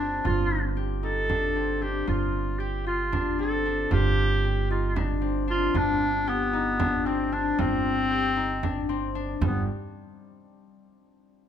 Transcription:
Already playing: G1 C4 D4 F4 G4
0.00 D4
0.25 G1 F4, frame drum
0.77 G4, frame drum
1.03 D#4 A4, frame drum
1.29 D4, frame drum
1.56 C4
1.82 D4 G4, frame drum
2.07 G1 F4, frame drum
2.59 G4
2.86 F4, frame drum
3.12 D4, frame drum
3.39 C4 A4, frame drum
3.66 D4
3.91 G1 F4 G4, frame drum
4.45 G4
4.70 D#4 F4, frame drum
4.96 D4, frame drum
5.21 C4, frame drum
5.48 D4 F4
5.74 G1 D4 F4, frame drum
6.27 B3 G4
6.53 D#4, frame drum
6.79 D4, frame drum
7.06 C4, frame drum
7.32 D4
7.58 G1 C4 F4, frame drum
8.11 G4
8.37 D#4, frame drum
8.63 D4, frame drum
8.89 C4, frame drum
9.15 D4
9.41 G1 G3 B3, frame drum

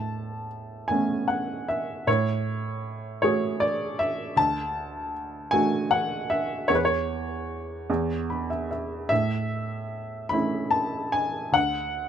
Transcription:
Already playing: A2 A5
0.88 A3 B3 C#4 G#5
1.28 F#5
1.69 E5
2.07 A2 C#5
3.22 A3 F#4 G#4 C#5
3.60 D5
3.99 E5
4.36 D2 A5
5.51 A3 D4 F#4 G#5
5.91 F#5
6.30 E5
6.68 E2 C#5
6.75 B4
6.85 C#5
7.90 E2
8.30 B5
8.50 E5
8.71 E5
9.09 A2 E5
10.29 A3 C#4 E4 B5
10.71 A5
11.12 G#5
11.52 D2 F#5

